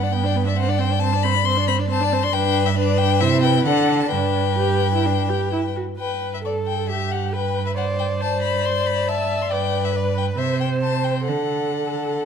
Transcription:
Already playing: cello G2, violin F#5
0.03 viola D4, violin D5
0.13 viola B3, violin B4 G5
0.24 viola D4, violin D5
0.36 viola B3, violin B4
0.46 viola D4, violin D5 E5
0.56 viola C4, violin C5 F#5
0.68 viola D4, violin D5
0.78 viola C4, violin C5 G5
0.90 viola D4, violin D5
1.00 viola C4, violin C5 A5
1.13 viola D4, violin D5
1.23 viola C4, violin C5 B5
1.35 viola D4, violin D5
1.45 viola C4, violin C5 C6
1.57 viola D4, violin D5
1.68 viola C4, violin C5 B5
1.79 viola D4, violin D5
1.90 viola C4, violin C5 A5
2.01 viola D4, violin D5
2.12 viola C4, violin C5
2.23 viola D4, violin D5 C6
2.33 cello G2, viola D4, violin B4 G5
2.66 violin E5
2.76 viola D4, violin B4 D5
2.98 violin G5
3.20 cello C3, viola E4, violin C5 E5
3.42 violin B4 G5
3.65 cello D3, viola D4, violin A4 F#5
4.00 violin A5
4.12 cello G2, viola D4, violin B4 G5
4.58 viola G4
4.94 viola E4
5.06 viola D4
5.30 viola G4
5.52 viola E4
5.76 viola F#4
5.99 cello G2, viola B4, violin B4 G5
6.34 violin E5
6.44 viola A4, violin A4 D5
6.67 violin G5
6.89 viola G4, violin G4 E5
7.12 violin F#5
7.33 viola B4, violin B4 G5
7.66 violin E5
7.76 violin C5 F#5, viola D5
7.99 violin G5
8.21 viola C5, violin D5 A5
8.43 violin B5
8.65 violin C6
8.87 violin B5
9.08 viola E5, violin A5
9.42 violin C6
9.51 cello G2, violin B4 G5, viola D5
9.85 violin E5
9.95 viola B4, violin D5
10.18 violin G5
10.38 cello C3, violin C5 E5, viola C5
10.60 violin G5
10.82 violin C5 A5
11.04 violin G5
11.27 cello D3, viola A4, violin A4 F#5

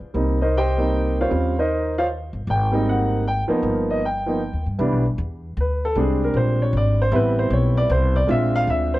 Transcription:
0.14 upright bass C2, grand piano G3 A#3 C4 D#4
0.41 grand piano D#4 A#4 C5 D#5
0.57 grand piano G4 C5 D#5 G5
0.77 grand piano G3 A#3 C4 D#4
1.20 grand piano F4 C5 C#5 F5
1.29 upright bass D#2, grand piano G3 C4 C#4 F4
1.59 grand piano D#4 A#4 C5 D#5
1.98 grand piano F4 C5 C#5 F5
2.33 upright bass G1
2.47 upright bass G#1, grand piano G5
2.71 grand piano G3 A#3 C4 D#4
2.89 grand piano F#5
3.28 grand piano G5
3.48 grand piano F3 A#3 B3 D#4, muted upright bass stroke
3.63 upright bass G1
3.90 grand piano D#5
4.05 grand piano G5
4.26 grand piano F3 A#3 B3 D#4
4.53 upright bass D#2
4.66 upright bass G2
4.78 upright bass C2, grand piano E3 G3 B3 D4
4.92 upright bass B1
5.05 upright bass G1
5.18 upright bass E2
5.57 upright bass D2, grand piano B4
5.85 grand piano A4
5.95 upright bass C2, grand piano G3 G#3 C4 D4
5.99 grand piano G#4
6.24 grand piano A#4
6.34 upright bass A#1, grand piano C5
6.62 grand piano C#5
6.73 upright bass G#1
6.77 grand piano D5
7.02 grand piano C5
7.11 upright bass A1, grand piano G3 B3 C4 E4
7.15 grand piano B4
7.39 grand piano C5
7.50 upright bass B1, grand piano C#5
7.77 grand piano D5
7.89 upright bass C2, grand piano C5
8.16 grand piano D5
8.27 upright bass A#1, grand piano G#3 C4 D4 F4 E5
8.55 grand piano F5
8.67 upright bass D2, grand piano E5
8.94 grand piano C5

